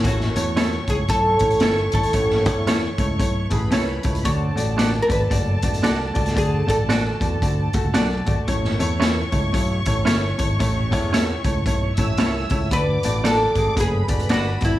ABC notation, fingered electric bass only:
X:1
M:4/4
L:1/16
Q:"Swing" 1/4=114
K:A
V:1 name="Fingered electric bass" clef=bass
A,,,2 E,,4 C,,2 B,,,2 A,,,2 =G,,,2 ^G,,,2 | A,,,2 E,,4 C,,2 B,,,2 A,,,2 =C,,2 ^C,,2 | D,,2 A,,,4 G,,,2 F,,,2 E,,,2 =C,,2 ^C,,2 | D,,2 A,,,4 E,,2 D,,2 z C,, B,,,2 G,,, z |
A,,,2 E,,4 C,,2 B,,,2 A,,,2 =G,,,2 ^G,,,2 | A,,,2 E,,4 C,,2 B,,,2 A,,,2 =C,,2 ^C,,2 | D,,2 A,,,4 G,,,2 F,,,2 E,,,2 =G,,,2 ^G,,,2 |]